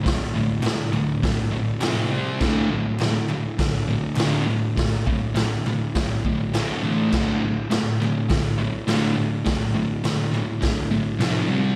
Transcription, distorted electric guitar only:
0.03 D2 A2
0.34 D2 A2
0.62 D2 A2
0.92 D2 A2
1.22 D2 A2
1.52 D2 A2
1.81 F2 C3 F3
2.11 C3 G3 C4
2.40 D2 A2 D3
2.70 D2 A2
3.00 D2 A2
3.29 D2 A2
3.58 D2 A2
3.88 D2 A2
4.17 D2 A2 D3
4.47 D2 A2
4.77 D2 A2
5.07 D2 A2
5.35 D2 A2
5.66 D2 A2
5.95 D2 A2
6.26 D2 A2
6.53 D2 A2 D3
6.83 A2 E3 A3
7.12 D2 A2 D3
7.41 D2 A2
7.70 D2 A2
8.01 D2 A2
8.29 D2 A2
8.58 D2 A2
8.88 D2 A2 D3
9.16 D2 A2
9.45 D2 A2
9.74 D2 A2
10.04 D2 A2
10.32 D2 A2
10.60 D2 A2
10.91 D2 A2
11.18 F2 C3 F3
11.49 C3 G3 C4

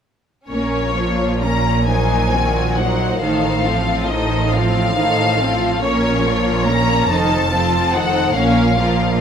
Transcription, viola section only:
0.50 A#3 C#4
0.97 F3 A#3
1.43 A#3 C#4
1.88 F#3 D#4
2.34 D#3 C4
2.77 F#3 D#4
3.21 D#3 D#4
3.65 F3 C4
4.09 D#3 D#4
4.53 F3 C4
4.96 D#3 D#4
5.38 F3 C4
5.81 A#3 C#4
6.25 F3 A#3
6.67 A#3 C#4
7.11 D#3 D#4
7.53 F3 C4
7.95 D#3 D#4
8.36 A#3 C#4
8.79 F3 A#3

